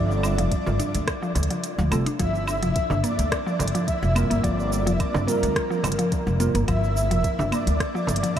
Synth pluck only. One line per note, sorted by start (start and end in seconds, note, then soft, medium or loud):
0.38 0.65 F3 loud
0.66 0.74 F4 medium
0.79 1.21 D4 medium
1.23 1.35 F3 loud
1.50 1.63 F3 medium
1.78 1.91 F3 medium
1.91 2.05 A3 medium
2.06 2.18 D4 loud
2.19 2.34 F3 loud
2.63 2.89 F3 loud
2.91 2.98 D4 medium
3.04 3.45 A#3 medium
3.46 3.59 F3 loud
3.75 4.01 F3 loud
4.03 4.14 F3 medium
4.15 4.29 A#3 medium
4.30 4.42 A#3 medium
4.44 4.58 F3 loud
4.87 5.13 F3 loud
5.14 5.22 D4 medium
5.27 5.69 A#3 medium
5.70 5.83 F3 loud
5.99 6.25 F3 loud
6.27 6.39 F3 medium
6.40 6.54 A#3 medium
6.55 6.67 A#3 loud
6.68 6.82 F3 loud
7.11 7.38 F3 loud
7.39 7.47 D4 medium
7.52 7.94 A#3 medium
7.95 8.08 F3 loud
8.23 8.39 F3 loud